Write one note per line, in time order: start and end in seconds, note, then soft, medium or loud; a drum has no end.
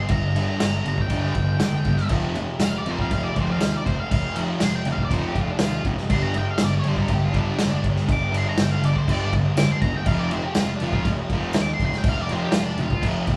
0.08 0.45 G1 medium
0.08 0.34 G2 medium
0.08 0.34 D3 medium
0.08 0.85 A#5 loud
0.08 kick loud
0.08 crash medium
0.36 0.60 G2 medium
0.36 0.60 D3 medium
0.36 0.60 G3 loud
0.36 crash medium
0.60 0.78 G1 medium
0.60 0.83 G2 medium
0.60 0.84 D3 medium
0.60 snare loud
0.60 tambourine loud
0.60 crash medium
0.84 1.02 G1 medium
0.84 1.08 G2 medium
0.84 1.09 D3 medium
0.84 1.00 A#5 medium
0.84 crash medium
0.98 1.59 G5 medium
0.98 kick medium
1.10 1.28 G1 medium
1.10 1.34 G2 loud
1.10 1.35 D3 medium
1.10 1.35 G3 medium
1.10 kick medium
1.10 crash medium
1.35 1.53 G1 loud
1.35 1.59 G2 medium
1.35 1.59 D3 medium
1.35 kick medium
1.35 crash medium
1.59 1.77 F1 loud
1.59 1.83 G2 medium
1.59 1.84 D3 medium
1.59 2.09 G5 medium
1.59 snare loud
1.59 tambourine medium
1.59 crash medium
1.85 2.03 G1 medium
1.85 2.09 G2 medium
1.85 2.09 D3 medium
1.85 kick medium
1.85 crash medium
1.97 snare soft
2.09 2.45 F1 medium
2.09 2.34 F2 medium
2.09 2.34 C3 medium
2.09 2.35 F3 loud
2.09 kick loud
2.09 crash medium
2.35 2.58 F2 medium
2.35 2.59 C3 medium
2.35 crash medium
2.59 2.77 F1 medium
2.59 2.83 F2 medium
2.59 2.84 C3 medium
2.59 snare loud
2.59 tambourine medium
2.59 crash medium
2.64 2.78 F5 loud
2.78 2.91 D5 medium
2.84 3.02 F1 medium
2.84 3.10 F2 loud
2.84 3.10 C3 medium
2.84 crash medium
2.89 3.11 F3 loud
2.89 3.01 C5 medium
2.99 3.11 F5 loud
2.99 kick medium
3.11 3.29 F1 medium
3.11 3.34 F2 medium
3.11 3.34 C3 medium
3.11 3.24 F5 medium
3.11 kick medium
3.11 crash medium
3.23 3.36 D5 medium
3.36 3.54 F1 loud
3.36 3.59 F2 loud
3.36 3.60 C3 loud
3.36 3.60 F3 loud
3.36 kick medium
3.36 crash medium
3.41 3.51 C5 medium
3.51 3.61 F5 loud
3.57 3.76 D#2 medium
3.57 3.83 F2 medium
3.57 tambourine medium
3.61 3.84 C3 medium
3.61 3.74 F5 medium
3.61 snare loud
3.61 crash medium
3.77 3.85 D5 medium
3.85 4.03 F1 medium
3.85 4.08 F2 medium
3.85 4.08 C3 medium
3.85 3.98 C5 medium
3.85 kick medium
3.85 crash medium
4.00 4.10 F5 medium
4.11 4.46 F1 medium
4.11 4.34 F2 medium
4.11 4.34 C3 medium
4.11 4.35 F5 loud
4.11 kick loud
4.11 crash medium
4.35 4.58 F2 medium
4.35 4.58 C3 medium
4.35 4.60 F3 loud
4.35 crash medium
4.59 4.78 F1 medium
4.59 4.82 F2 medium
4.59 4.82 C3 medium
4.59 snare loud
4.59 tambourine medium
4.59 crash medium
4.65 4.75 C6 loud
4.76 4.86 G5 medium
4.85 5.03 F1 loud
4.85 5.08 F2 medium
4.85 5.09 C3 medium
4.85 crash medium
4.92 5.01 F5 medium
4.98 kick medium
5.05 5.13 D5 loud
5.10 5.28 F1 medium
5.10 5.33 F2 medium
5.10 5.34 C3 loud
5.10 5.35 F3 loud
5.10 5.24 C5 medium
5.10 kick loud
5.10 crash medium
5.28 5.38 G4 medium
5.35 5.53 F1 loud
5.35 5.59 F2 medium
5.35 5.59 C3 medium
5.35 kick medium
5.35 crash medium
5.41 5.51 F4 medium
5.51 5.60 D4 medium
5.59 5.77 D#2 medium
5.59 5.83 F2 medium
5.59 5.83 C3 medium
5.59 5.84 F4 medium
5.59 snare loud
5.59 tambourine medium
5.59 crash medium
5.83 6.01 F#1 medium
5.83 6.08 F2 medium
5.83 6.08 C3 medium
5.83 kick medium
5.83 crash medium
5.97 snare soft
6.09 6.44 G1 medium
6.09 6.33 G2 loud
6.09 6.34 D3 loud
6.09 6.34 G3 loud
6.09 6.22 C6 loud
6.09 kick loud
6.09 crash medium
6.22 6.34 A#5 medium
6.34 6.58 G2 medium
6.34 6.58 D3 medium
6.34 6.50 G5 loud
6.34 crash medium
6.50 6.61 F5 medium
6.58 6.77 G1 medium
6.58 6.82 G2 medium
6.58 6.83 D3 medium
6.58 snare loud
6.58 tambourine medium
6.58 crash medium
6.64 6.74 D5 loud
6.79 6.88 C#5 medium
6.84 7.02 G1 medium
6.84 7.08 G2 medium
6.84 7.09 D3 loud
6.84 crash medium
6.88 7.09 G3 loud
6.88 6.98 C5 medium
6.96 kick medium
7.01 7.14 A#4 medium
7.08 7.27 G1 loud
7.08 7.32 G2 medium
7.08 kick loud
7.08 crash medium
7.13 7.33 D3 medium
7.13 7.24 G4 medium
7.25 7.38 F4 loud
7.33 7.51 G1 loud
7.33 7.57 G2 loud
7.33 7.58 D3 medium
7.33 7.58 G3 loud
7.33 kick medium
7.33 crash medium
7.38 7.60 D4 medium
7.58 7.76 F1 medium
7.58 7.82 G2 medium
7.58 7.82 D3 medium
7.58 snare loud
7.58 tambourine medium
7.58 crash medium
7.65 7.86 D4 loud
7.83 8.01 G1 medium
7.83 8.05 G2 medium
7.83 8.06 D3 medium
7.83 kick medium
7.83 crash medium
7.96 snare soft
8.06 8.43 G1 medium
8.06 8.30 G2 medium
8.06 8.30 D3 medium
8.06 kick loud
8.06 crash medium
8.12 8.34 D6 loud
8.32 8.55 G2 medium
8.32 8.56 D3 medium
8.32 8.57 G3 loud
8.32 crash medium
8.38 8.48 C6 loud
8.49 8.59 A#5 loud
8.56 8.75 G1 medium
8.56 8.80 G2 medium
8.56 8.80 D3 medium
8.56 snare loud
8.56 tambourine medium
8.56 crash medium
8.61 8.71 G5 loud
8.71 8.83 F5 medium
8.82 8.99 G1 medium
8.82 9.05 G2 medium
8.82 9.05 D3 medium
8.82 8.98 D5 medium
8.82 crash medium
8.96 9.11 C5 loud
8.96 kick medium
9.07 9.25 G1 medium
9.07 9.31 G2 medium
9.07 9.31 D3 loud
9.07 9.32 G3 loud
9.07 9.33 D5 loud
9.07 kick loud
9.07 crash medium
9.32 9.49 G1 loud
9.32 9.55 G2 medium
9.32 9.55 D3 medium
9.32 kick medium
9.32 crash medium
9.56 9.73 F1 medium
9.56 9.80 G2 medium
9.56 9.80 D3 medium
9.56 9.70 D6 loud
9.56 snare loud
9.56 tambourine loud
9.56 crash medium
9.72 9.81 C6 medium
9.81 9.99 E1 medium
9.81 10.04 G2 medium
9.81 10.04 D3 medium
9.81 9.94 A#5 loud
9.81 kick medium
9.81 crash medium
9.97 10.07 G5 loud
10.05 10.40 F1 loud
10.05 10.29 F2 loud
10.05 10.30 C3 loud
10.05 10.31 F3 loud
10.05 10.19 F5 medium
10.05 kick loud
10.05 crash medium
10.19 10.31 D5 medium
10.31 10.54 F2 medium
10.31 10.54 C3 medium
10.31 10.45 C5 loud
10.31 crash medium
10.44 10.56 G4 medium
10.55 10.73 F1 medium
10.55 10.78 F2 medium
10.55 10.78 C3 medium
10.55 snare loud
10.55 tambourine medium
10.55 crash medium
10.61 10.70 F4 loud
10.76 10.84 D4 loud
10.76 crash medium
10.80 10.98 F1 medium
10.80 11.04 F2 medium
10.80 11.04 C3 loud
10.80 11.05 F3 loud
10.88 11.08 F4 loud
10.93 kick medium
11.05 11.22 F1 loud
11.05 11.28 F2 medium
11.05 11.28 C3 loud
11.05 kick loud
11.05 crash medium
11.30 11.47 F1 loud
11.30 11.54 F2 loud
11.30 11.54 C3 loud
11.30 11.54 F3 loud
11.30 kick medium
11.30 crash medium
11.53 11.72 D#2 medium
11.53 11.78 F2 medium
11.53 snare loud
11.53 tambourine medium
11.53 crash medium
11.57 11.78 C3 loud
11.61 11.70 D6 loud
11.74 11.83 C6 loud
11.79 11.97 F1 medium
11.79 12.03 F2 medium
11.79 12.03 C3 medium
11.79 kick medium
11.79 crash medium
11.86 11.95 C6 loud
11.93 snare soft
11.98 12.07 G5 medium
12.04 12.38 F1 loud
12.04 12.28 F2 medium
12.04 12.28 C3 medium
12.04 kick loud
12.04 crash medium
12.09 12.19 F5 medium
12.22 12.32 D5 loud
12.29 12.53 F2 medium
12.29 12.53 C3 loud
12.29 12.54 F3 loud
12.29 12.42 C5 loud
12.29 crash medium
12.42 12.54 G4 loud
12.52 12.71 F1 medium
12.52 12.76 F2 medium
12.52 12.76 C3 medium
12.52 12.65 F4 loud
12.52 snare loud
12.52 tambourine medium
12.52 crash medium
12.65 12.78 D4 medium
12.77 12.95 F1 loud
12.77 13.00 F2 medium
12.77 13.00 C3 medium
12.77 crash medium
12.82 13.04 F4 loud
12.90 kick medium
13.01 13.19 F1 loud
13.01 13.25 F2 medium
13.01 13.25 C3 loud
13.01 13.26 F3 loud
13.01 kick loud
13.01 crash loud
13.27 13.37 F1 loud
13.27 13.37 F2 medium
13.27 13.37 C3 medium
13.27 kick medium
13.27 crash medium